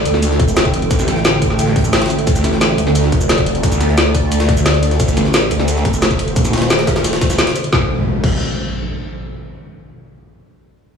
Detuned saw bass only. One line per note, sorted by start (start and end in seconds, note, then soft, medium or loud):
0.06 0.38 D2 loud
0.40 0.89 F1 loud
0.91 2.26 A1 loud
2.27 2.43 D2 loud
2.44 2.77 A1 loud
2.78 3.11 D2 loud
3.12 3.62 F1 loud
3.63 4.98 D2 loud
5.00 5.15 D2 loud
5.17 5.50 A1 loud
5.51 5.84 D2 loud
5.85 6.35 F1 loud
6.36 7.71 D#1 loud
7.73 7.82 D1 loud
8.24 8.39 D1 loud